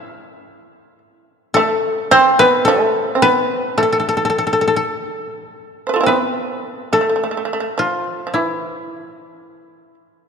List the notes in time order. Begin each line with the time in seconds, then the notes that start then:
Already playing: E4 A4 B4 C5 E5
1.54 A3 A4
2.11 C4 C5
2.39 B3 B4
2.65 A3 A4
3.15 C4
3.22 B3 B4
3.78 A3 A4
3.83 A4
3.92 A4
4.00 A4
4.09 A4
4.17 A4
4.25 A4
4.30 A4
4.38 A4
4.47 A4
4.53 A4
4.61 A4
4.68 A4
4.76 A4
5.87 B4 C5
5.94 F4 A4
6.01 C4 E4
6.06 B3 B4
6.93 A3 A4
7.01 A3
7.09 A3
7.16 A3
7.24 A3
7.31 A3
7.37 A3
7.45 A3
7.53 A3
7.60 A3
7.78 F3 F4
8.27 F3
8.34 E3 E4